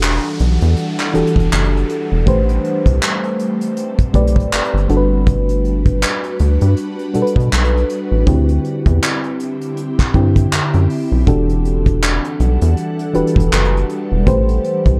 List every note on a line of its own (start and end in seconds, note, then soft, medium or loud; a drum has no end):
0.00 0.20 E1 loud
0.00 0.50 E3 medium
0.00 2.24 E3 medium
0.00 4.85 G3 medium
0.00 0.50 D4 medium
0.00 2.24 D4 medium
0.00 0.50 F#4 medium
0.00 0.50 G4 medium
0.00 0.51 A4 medium
0.00 2.24 A4 medium
0.00 2.24 F#5 medium
0.00 clap loud
0.00 closed hi-hat medium
0.00 downlifter medium
0.24 closed hi-hat soft
0.39 0.59 B1 medium
0.39 closed hi-hat medium
0.61 0.75 E2 loud
0.61 closed hi-hat medium
0.76 closed hi-hat medium
0.98 clap medium
0.98 closed hi-hat medium
1.14 1.24 E1 soft
1.14 2.08 E3 medium
1.14 2.08 D4 medium
1.14 2.08 F#4 medium
1.14 2.09 G4 medium
1.14 2.09 A4 medium
1.14 closed hi-hat medium
1.27 closed hi-hat medium
1.36 1.50 E1 medium
1.36 kick medium
1.36 closed hi-hat medium
1.52 1.84 F#1 loud
1.52 clap loud
1.52 closed hi-hat medium
1.64 closed hi-hat soft
1.77 closed hi-hat soft
1.89 closed hi-hat medium
2.12 2.25 E1 loud
2.26 2.59 A1 loud
2.26 3.50 A3 medium
2.26 4.87 A3 medium
2.26 4.87 C4 medium
2.26 3.50 G4 medium
2.26 3.50 B4 medium
2.26 3.51 C5 medium
2.26 kick loud
2.26 closed hi-hat medium
2.49 closed hi-hat medium
2.64 closed hi-hat medium
2.86 3.00 C2 medium
2.86 kick medium
2.86 closed hi-hat medium
3.02 clap loud
3.02 closed hi-hat medium
3.23 closed hi-hat soft
3.39 closed hi-hat medium
3.61 closed hi-hat medium
3.76 closed hi-hat medium
3.99 4.05 B1 soft
3.99 kick medium
3.99 closed hi-hat medium
4.13 4.47 B1 medium
4.13 4.89 A3 medium
4.13 4.89 G4 medium
4.13 4.90 B4 medium
4.13 4.90 D5 medium
4.13 kick medium
4.13 closed hi-hat medium
4.27 closed hi-hat medium
4.36 kick medium
4.36 closed hi-hat medium
4.52 4.61 G1 medium
4.52 clap loud
4.52 closed hi-hat medium
4.64 closed hi-hat soft
4.74 4.87 G1 medium
4.74 closed hi-hat soft
4.89 6.05 G1 loud
4.89 6.12 G3 medium
4.89 8.24 G3 medium
4.89 8.23 D4 medium
4.89 6.13 D4 medium
4.89 8.23 F#4 medium
4.89 6.13 F#4 medium
4.89 4.98 A4 medium
4.89 8.23 B4 medium
4.89 closed hi-hat medium
4.97 6.16 B4 loud
5.27 kick loud
5.27 closed hi-hat medium
5.49 closed hi-hat medium
5.65 closed hi-hat medium
5.86 kick medium
5.86 closed hi-hat medium
6.02 clap loud
6.02 closed hi-hat medium
6.23 closed hi-hat soft
6.39 6.58 D2 medium
6.39 closed hi-hat medium
6.61 6.75 G2 loud
6.61 closed hi-hat medium
6.76 closed hi-hat medium
6.99 closed hi-hat medium
7.14 7.24 B2 soft
7.14 8.08 G3 medium
7.14 8.08 D4 medium
7.14 8.09 F#4 medium
7.14 7.23 A4 medium
7.14 closed hi-hat medium
7.22 8.12 B4 medium
7.27 closed hi-hat medium
7.36 7.50 B2 loud
7.36 kick loud
7.36 closed hi-hat medium
7.52 7.84 B1 loud
7.52 clap loud
7.52 closed hi-hat medium
7.64 closed hi-hat soft
7.77 closed hi-hat soft
7.89 closed hi-hat medium
8.12 8.25 A1 medium
8.26 8.59 D2 loud
8.26 9.50 D3 medium
8.26 11.24 D3 medium
8.26 11.24 C4 medium
8.26 9.50 C4 medium
8.26 11.24 E4 medium
8.26 9.50 E4 medium
8.26 11.24 G4 medium
8.26 9.51 G4 medium
8.26 kick loud
8.26 closed hi-hat medium
8.49 closed hi-hat medium
8.64 closed hi-hat medium
8.86 9.00 E2 loud
8.86 kick medium
8.86 closed hi-hat medium
9.02 clap loud
9.02 closed hi-hat medium
9.24 closed hi-hat soft
9.39 closed hi-hat medium
9.61 closed hi-hat medium
9.77 closed hi-hat medium
9.99 10.05 G2 soft
9.99 kick medium
9.99 clap medium
9.99 closed hi-hat medium
10.14 10.47 G2 loud
10.14 11.08 D3 medium
10.14 11.08 C4 medium
10.14 11.09 E4 medium
10.14 11.09 G4 loud
10.14 kick medium
10.14 closed hi-hat soft
10.36 kick medium
10.36 closed hi-hat medium
10.52 10.61 F#2 soft
10.52 clap loud
10.52 closed hi-hat medium
10.74 10.88 F#2 loud
10.74 closed hi-hat soft
10.90 open hi-hat medium
11.12 11.25 B1 medium
11.26 12.20 E1 loud
11.26 12.50 E3 medium
11.26 14.24 E3 medium
11.26 15.00 G3 medium
11.26 14.24 D4 medium
11.26 12.50 D4 medium
11.26 12.50 F#4 medium
11.26 12.51 G4 medium
11.26 14.24 A4 medium
11.26 12.51 A4 medium
11.26 14.24 F#5 medium
11.26 kick loud
11.26 closed hi-hat medium
11.49 closed hi-hat medium
11.65 closed hi-hat medium
11.86 kick medium
11.86 closed hi-hat medium
12.02 clap loud
12.02 closed hi-hat medium
12.24 closed hi-hat soft
12.40 12.58 B1 medium
12.40 closed hi-hat medium
12.61 12.75 E2 loud
12.61 closed hi-hat medium
12.77 closed hi-hat medium
12.99 closed hi-hat medium
13.14 13.24 E1 soft
13.14 14.08 E3 medium
13.14 14.08 D4 medium
13.14 14.08 F#4 medium
13.14 14.09 G4 medium
13.14 14.09 B4 medium
13.14 closed hi-hat medium
13.27 closed hi-hat medium
13.36 13.50 E1 medium
13.36 kick medium
13.36 closed hi-hat medium
13.52 13.85 F#1 loud
13.52 clap loud
13.52 closed hi-hat medium
13.64 closed hi-hat soft
13.77 closed hi-hat soft
13.89 closed hi-hat medium
14.12 14.25 E1 medium
14.26 14.59 A1 loud
14.26 15.00 A3 medium
14.26 15.00 C4 medium
14.26 15.00 G4 medium
14.26 15.00 B4 medium
14.26 15.00 C5 medium
14.26 kick loud
14.26 closed hi-hat medium
14.48 closed hi-hat medium
14.64 closed hi-hat medium
14.86 15.00 C2 medium
14.86 kick medium
14.86 closed hi-hat medium